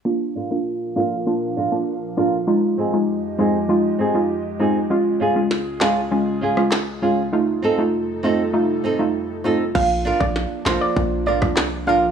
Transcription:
0.05 A#2 F3 A#3 D4 F4 A#4 F5
0.35 D4 F4 A#4
0.51 A#3 D4 F4
0.96 A#3 D4 F4 A#4
1.26 A#3 D4 F4
1.56 D4 F4 A#4
1.72 A#3 D4 F4
2.17 A#3 D4 F4 A#4
2.47 F2 G#3 D#4 F4 G4 D#5
2.78 C4 D#4 G#4
2.93 G#3 D#4 F4
3.38 G#3 C4 D#4 F4 G#4
3.69 G#3 D#4 F4
3.99 C4 D#4 G#4
4.14 G#3 D#4 F4
4.59 G#3 C4 D#4 F4 G#4
4.90 C#2 C#3 G#3 C#4 F4 G#4
5.20 C#4 F4 G#4
5.36 G#3 C#4 F4
5.51 snare
5.80 G#3 C#4 F4 G#4, snare, clap
6.11 G#3 C#4 F4
6.41 C#4 F4 G#4
6.57 G#3 C#4 F4, cross-stick
6.71 snare, clap
7.02 G#3 C#4 F4 G#4
7.33 F2 C3 G3 A3 D#4 F4 A4
7.62 C4 D#4 A4
7.78 A3 D#4 F4
8.23 A3 C4 D#4 F4 A4
8.53 A3 D#4 F4
8.84 C4 D#4 A4
8.99 A3 D#4 F4
9.44 A3 C4 D#4 F4 A4
9.75 A#1 F3 A#3 D4 F4 F5, kick, crash
10.05 D4 F4 A#4
10.20 A#1 A#3 D4 F4 D5, kick
10.36 snare
10.66 A#1 A#3 D4 F4 A#4 C5, snare, clap
10.81 D5
10.96 A#1 A#3 D4 F4, kick
11.26 D4 F4 A#4 D5
11.42 C2 A#3 D4 F4, kick, cross-stick
11.56 snare, clap
11.87 A#1 A#3 D4 F4 A#4 F5

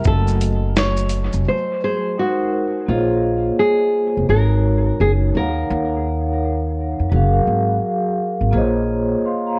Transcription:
0.03 F#1 F#3 F#4 G#5, kick, shaker
0.07 A3 A4 D#5
0.28 shaker
0.41 closed hi-hat, shaker
0.76 C#5, snare, shaker
0.97 shaker
1.10 closed hi-hat, shaker
1.33 F1, shaker
1.49 C5
1.84 G#4 C5
2.18 G#3 D#4 F#4 A#4 C5
2.86 A#1 A#3 F4 G#4 C5
2.91 C#5 D#5
3.59 G#4
4.17 F1
4.29 G#1 G#3 D#4 F#4 A#4
4.33 C#5
5.00 F#1 G#4
5.32 D#2 D#4 A#4 C#5
5.37 A#4 F5 F#5
5.70 D#2
6.99 F2
7.09 F#1 F#3 F#4 G#4
7.14 A#4 F5
7.47 G#1
8.41 G#1
8.51 A#1 A#3 F4 G#4 C5
8.56 C#5 D#5
9.26 F5 C6
9.46 F5 A#5

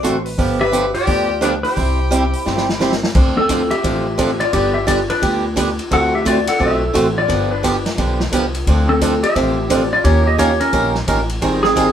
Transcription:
0.03 A1 D3 A3 C4 F#4 A4 C5, cross-stick, closed hi-hat
0.25 B4, open hi-hat
0.38 G1 D3 F3 B3 D4 G4, kick, open hi-hat
0.61 G4 B4 E5
0.72 D3 F3 B3 D4 G4, closed hi-hat
0.94 F4 G4 D5, open hi-hat
1.07 D2 D3 F3 B3 D4 G4, kick, open hi-hat
1.41 D3 F3 B3 D4 G4 B4, cross-stick, closed hi-hat
1.63 E4 G4 C5, open hi-hat
1.76 C2 C3 G3 C4 E4 G4, kick, open hi-hat
2.11 C3 G3 C4 E4 G4, closed hi-hat
2.33 open hi-hat
2.45 G1 C3 G3 C4 E4 G4, snare
2.57 snare
2.69 snare
2.80 C3 G3 C4 E4 G4, snare
2.92 snare
3.03 snare
3.15 D2 D3 F3 C4 D4 A4, kick, crash
3.37 C4 A4
3.49 D3 F3 C4 D4 A4, kick, hi-hat pedal, ride
3.71 G4 E5, ride
3.83 A1 D3 F3 C4 D4 A4, kick, ride
4.18 D3 F3 C4 D4 A4, kick, hi-hat pedal, ride
4.40 F4 D5, ride
4.53 G1 D3 G3 B3 D4 G4 D5, kick, ride
4.74 G4 E5
4.87 D3 G3 B3 D4 G4 D5, kick, hi-hat pedal, ride
5.10 D4 B4, ride
5.21 D2 D3 G3 B3 D4 G4, kick, ride
5.56 D3 G3 B3 D4 G4, kick, hi-hat pedal, ride
5.79 ride
5.91 D2 D3 A3 C4 F#4 A4 F#5, kick, ride
6.15 G4 E5
6.25 D3 A3 C4 F#4 A4 D5, kick, hi-hat pedal, ride
6.47 A4 F#5, ride
6.59 B1 D3 A3 C4 F#4 A4 E5, kick
6.94 A1 D3 A3 C4 F#4 A4, kick, hi-hat pedal, ride
7.18 F4 D5
7.28 G1 D3 F3 B3 D4 G4, kick, ride
7.51 D4 B4
7.63 D3 F3 B3 D4 G4, kick, hi-hat pedal, ride
7.86 snare, ride
7.97 B1 D3 F3 B3 D4 G4, kick, ride
8.20 snare
8.32 C2 D3 F3 B3 D4 G4, kick, hi-hat pedal, ride
8.55 ride
8.67 D2 D3 F3 C4 D4 A4, kick, ride
8.89 C4 A4
9.01 D3 F3 C4 D4 A4, kick, hi-hat pedal, ride
9.23 G4 E5, ride
9.35 A1 D3 F3 C4 D4 A4, kick, ride
9.70 D3 F3 C4 D4 A4, kick, hi-hat pedal, ride
9.76 D5
9.93 F4 D5
10.04 D#2 D#3 A#3 C#4 G4 A#4 C#5, kick, ride
10.26 G4 D#5
10.38 D#3 A#3 C#4 G4 A#4 C#5, kick, hi-hat pedal, ride
10.60 C#4 A#4, ride
10.72 A#1 D#3 A#3 C#4 G4 A#4, kick, ride
10.95 snare
11.07 A1 D#3 A#3 C#4 G4 A#4, kick, hi-hat pedal, ride
11.29 ride
11.41 G#1 D#3 G3 C4 D#4 G#4, kick, ride
11.63 C4 G#4, snare
11.76 D#3 G3 C4 D#4 G#4, kick, hi-hat pedal, ride

